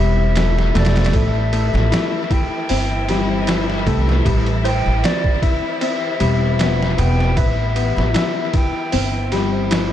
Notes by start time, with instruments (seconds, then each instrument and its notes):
Already playing: upright bass E1, string section E3 E4, felt piano G3 C4 E4 C5, flute E5
0.36 felt piano A3, snare, ride
0.59 snare
0.74 upright bass E1, felt piano A3, flute D5, snare, ride
0.85 snare, ride
0.96 snare, ride
1.05 snare, ride
1.13 upright bass A1, felt piano A4, flute E5, kick, ride
1.52 felt piano A3, ride
1.74 upright bass A1, snare
1.92 felt piano E4, snare, ride
2.31 felt piano E4, flute G5, kick, ride
2.69 upright bass G1, felt piano C4, open hi-hat
3.09 felt piano G3, snare, ride
3.47 felt piano E4, snare, ride
3.70 snare
3.86 upright bass C2, felt piano A3, kick, ride
4.09 snare
4.25 upright bass A1, felt piano G3, kick, ride
4.46 ride
4.64 felt piano C5, flute G5, ride
4.86 upright bass A1
5.03 felt piano C4, flute D5, snare, ride
5.24 kick
5.42 felt piano E4, flute E5, kick, ride
5.81 felt piano C4, flute E5, ride
6.20 upright bass E1, felt piano G3, ride
6.59 felt piano B3, snare, ride
6.82 snare
6.97 upright bass E1, felt piano B3, flute G5, ride
7.20 snare
7.36 upright bass A1, felt piano B4, flute E5, kick, ride
7.76 felt piano B3, ride
7.97 upright bass A1, snare
8.14 felt piano E4, snare, ride
8.53 felt piano E4, flute G5, kick, ride
8.92 upright bass G1, felt piano C4, open hi-hat
9.32 felt piano G3, snare, ride
9.71 felt piano E4, snare, ride